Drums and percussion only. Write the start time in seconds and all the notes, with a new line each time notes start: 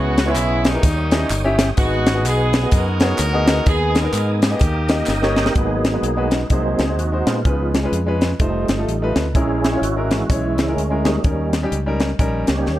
0.17 snare, closed hi-hat, tambourine
0.36 clap, closed hi-hat, tambourine
0.65 snare, closed hi-hat, tambourine
0.83 kick, closed hi-hat, tambourine
1.11 snare, closed hi-hat, tambourine
1.30 clap, closed hi-hat, tambourine
1.59 snare, closed hi-hat, tambourine
1.77 kick, closed hi-hat, tambourine
2.06 snare, closed hi-hat, tambourine
2.25 clap, closed hi-hat, tambourine
2.53 snare, closed hi-hat, tambourine
2.71 kick, closed hi-hat, tambourine
3.00 snare, closed hi-hat, tambourine
3.18 clap, closed hi-hat, tambourine
3.48 snare, closed hi-hat, tambourine
3.66 kick, closed hi-hat, tambourine
3.95 snare, closed hi-hat, tambourine
4.14 clap, closed hi-hat, tambourine
4.42 snare, closed hi-hat, tambourine
4.59 kick, closed hi-hat, tambourine
4.88 snare, closed hi-hat, tambourine
5.06 snare, clap, tambourine
5.23 snare
5.36 snare, tambourine
5.46 snare
5.55 kick, closed hi-hat
5.85 snare, closed hi-hat
6.03 closed hi-hat
6.31 snare, closed hi-hat
6.50 kick, closed hi-hat
6.79 snare, closed hi-hat
6.99 closed hi-hat
7.27 snare, closed hi-hat
7.45 kick, closed hi-hat
7.74 snare, closed hi-hat
7.93 closed hi-hat
8.21 snare, closed hi-hat
8.40 kick, closed hi-hat
8.68 snare, closed hi-hat
8.89 closed hi-hat
9.16 snare, closed hi-hat
9.35 kick, closed hi-hat
9.64 snare, closed hi-hat
9.83 closed hi-hat
10.11 snare, closed hi-hat
10.30 kick, closed hi-hat
10.58 snare, closed hi-hat
10.78 closed hi-hat
11.05 snare, closed hi-hat
11.24 kick, closed hi-hat
11.53 snare, closed hi-hat
11.72 closed hi-hat
12.00 snare, closed hi-hat
12.19 kick, closed hi-hat
12.47 snare, closed hi-hat
12.66 snare